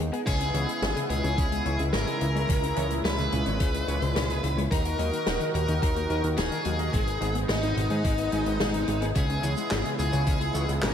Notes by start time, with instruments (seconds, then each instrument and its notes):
Already playing: analog synth pad G#3 B3 D#4
0.00 analog synth bass D#2
0.13 synth arpeggio sound B3, overdriven electric guitar G#4, closed hi-hat
0.27 analog synth bass C#2, synth arpeggio sound B2, analog synth pad C#3 G#3 B3 E4, overdriven electric guitar C#4, lead electric guitar G#4, digital synth lead G#5, kick, closed hi-hat, crash
0.40 synth arpeggio sound C#4, closed hi-hat
0.54 analog synth bass C#2, synth arpeggio sound E3, overdriven electric guitar C#5, closed hi-hat
0.68 synth arpeggio sound G#3, closed hi-hat
0.82 analog synth bass G#1, synth arpeggio sound E3, overdriven electric guitar C#4, snare, closed hi-hat
0.96 synth arpeggio sound C#3, overdriven electric guitar G#4, closed hi-hat
1.10 analog synth bass C#2, synth arpeggio sound B2, lead electric guitar G#4, digital synth lead G#5, closed hi-hat
1.24 analog synth bass C#2, synth arpeggio sound C#3, overdriven electric guitar C#5, closed hi-hat
1.38 analog synth bass C#2, synth arpeggio sound E3, overdriven electric guitar C#4, kick, closed hi-hat
1.52 synth arpeggio sound G#3, closed hi-hat
1.66 analog synth bass C#2, synth arpeggio sound E3, overdriven electric guitar C#5, closed hi-hat
1.79 analog synth bass C#2, synth arpeggio sound C#3, closed hi-hat
1.93 analog synth bass G#1, synth arpeggio sound B2, overdriven electric guitar C#4, lead electric guitar A#4, digital synth lead A#5, snare, closed hi-hat
2.07 synth arpeggio sound C#3, overdriven electric guitar G#4, closed hi-hat
2.21 analog synth bass C#2, synth arpeggio sound E3, closed hi-hat
2.35 synth arpeggio sound G#3, overdriven electric guitar C#5, closed hi-hat
2.49 analog synth bass C#2, analog synth pad A#2, synth arpeggio sound B2, overdriven electric guitar C#4, kick, closed hi-hat
2.63 synth arpeggio sound C#4, closed hi-hat
2.76 analog synth bass C#2, synth arpeggio sound E3, overdriven electric guitar C#5, closed hi-hat
2.90 synth arpeggio sound G#3, closed hi-hat
3.04 analog synth bass C#2, synth arpeggio sound E3, overdriven electric guitar C#4, lead electric guitar B4, digital synth lead B5, snare, closed hi-hat
3.18 synth arpeggio sound C#3, overdriven electric guitar G#4, closed hi-hat
3.32 analog synth bass C#2, synth arpeggio sound B2, closed hi-hat
3.46 analog synth bass G#1, synth arpeggio sound C#3, overdriven electric guitar C#5, closed hi-hat
3.60 analog synth bass C#2, synth arpeggio sound E3, overdriven electric guitar C#4, kick, closed hi-hat
3.74 synth arpeggio sound G#3, closed hi-hat
3.88 analog synth bass C#2, synth arpeggio sound E3, overdriven electric guitar C#5, closed hi-hat
4.02 analog synth bass C#2, synth arpeggio sound C#3, closed hi-hat
4.15 analog synth bass C#2, synth arpeggio sound B2, overdriven electric guitar C#4, snare, closed hi-hat
4.29 synth arpeggio sound C#3, overdriven electric guitar G#4, closed hi-hat
4.43 analog synth bass C#2, synth arpeggio sound E3, closed hi-hat
4.57 synth arpeggio sound G#3, overdriven electric guitar C#5, closed hi-hat
4.71 analog synth bass D#2, synth arpeggio sound A#2, analog synth pad D#3 D#4 F#4 A#4, overdriven electric guitar D#4, lead electric guitar A#4, digital synth lead A#5, kick, closed hi-hat
4.85 synth arpeggio sound F#4, closed hi-hat
4.99 analog synth bass D#2, synth arpeggio sound F#3, overdriven electric guitar D#5, closed hi-hat
5.13 synth arpeggio sound A#3, closed hi-hat
5.26 analog synth bass D#1, synth arpeggio sound F#3, overdriven electric guitar D#4, snare, closed hi-hat
5.40 synth arpeggio sound D#3, overdriven electric guitar A#4, closed hi-hat
5.54 analog synth bass D#2, synth arpeggio sound A#2, lead electric guitar A#4, digital synth lead A#5, closed hi-hat
5.68 analog synth bass D#2, synth arpeggio sound D#3, overdriven electric guitar D#5, closed hi-hat
5.82 analog synth bass D#2, synth arpeggio sound F#3, overdriven electric guitar D#4, kick, closed hi-hat
5.96 synth arpeggio sound A#3, closed hi-hat
6.10 analog synth bass D#2, synth arpeggio sound F#3, overdriven electric guitar D#5, closed hi-hat
6.24 analog synth bass D#2, synth arpeggio sound D#3, closed hi-hat
6.37 analog synth bass D#1, synth arpeggio sound A#2, overdriven electric guitar D#4, lead electric guitar G#4, digital synth lead G#5, snare, closed hi-hat
6.52 synth arpeggio sound D#3, overdriven electric guitar A#4, closed hi-hat
6.65 analog synth bass D#2, synth arpeggio sound F#3, closed hi-hat
6.79 synth arpeggio sound A#3, overdriven electric guitar D#5, closed hi-hat
6.93 analog synth bass G#1, synth arpeggio sound B2, overdriven electric guitar G#3, analog synth pad G#3 B3 D#4, kick, closed hi-hat
7.07 synth arpeggio sound G#4, closed hi-hat
7.21 analog synth bass G#1, synth arpeggio sound G#3, overdriven electric guitar G#4, closed hi-hat
7.35 synth arpeggio sound B3, closed hi-hat
7.49 analog synth bass G#1, overdriven electric guitar G#3, synth arpeggio sound G#3, lead electric guitar D#4, digital synth lead D#5, snare, closed hi-hat
7.63 synth arpeggio sound D#3, overdriven electric guitar D#4, closed hi-hat
7.77 analog synth bass G#1, synth arpeggio sound B2, closed hi-hat
7.90 analog synth bass G#2, synth arpeggio sound D#3, overdriven electric guitar G#4, closed hi-hat
8.04 analog synth bass G#1, overdriven electric guitar G#3, synth arpeggio sound G#3, kick, closed hi-hat
8.18 synth arpeggio sound B3, closed hi-hat
8.32 analog synth bass G#1, synth arpeggio sound G#3, overdriven electric guitar G#4, closed hi-hat
8.46 analog synth bass G#1, synth arpeggio sound D#3, closed hi-hat
8.60 analog synth bass G#1, synth arpeggio sound B2, overdriven electric guitar G#3, snare, closed hi-hat
8.74 synth arpeggio sound D#3, overdriven electric guitar D#4, closed hi-hat
8.88 analog synth bass G#1, synth arpeggio sound G#3, closed hi-hat
9.02 synth arpeggio sound B3, overdriven electric guitar G#4, closed hi-hat
9.15 analog synth bass C#2, synth arpeggio sound B2, analog synth pad C#3 B3 E4, overdriven electric guitar C#4, lead electric guitar G#4, digital synth lead G#5, kick, closed hi-hat, shaker
9.30 synth arpeggio sound C#4, closed hi-hat
9.43 analog synth bass C#2, synth arpeggio sound E3, overdriven electric guitar C#5, closed hi-hat, shaker
9.57 synth arpeggio sound G#3, closed hi-hat, shaker
9.71 analog synth bass G#1, synth arpeggio sound E3, overdriven electric guitar C#4, snare, clap, closed hi-hat, shaker
9.85 synth arpeggio sound C#3, overdriven electric guitar G#4, closed hi-hat
9.99 analog synth bass C#2, synth arpeggio sound B2, lead electric guitar G#4, digital synth lead G#5, closed hi-hat, shaker
10.13 analog synth bass C#2, synth arpeggio sound C#3, overdriven electric guitar C#5, closed hi-hat, shaker
10.27 analog synth bass C#2, synth arpeggio sound E3, overdriven electric guitar C#4, kick, closed hi-hat, shaker
10.41 synth arpeggio sound G#3, closed hi-hat
10.55 analog synth bass C#2, synth arpeggio sound E3, overdriven electric guitar C#5, closed hi-hat, shaker
10.68 analog synth bass C#2, synth arpeggio sound C#3, closed hi-hat, shaker
10.82 analog synth bass G#1, synth arpeggio sound B2, overdriven electric guitar C#4, lead electric guitar A#4, digital synth lead A#5, snare, clap, closed hi-hat, shaker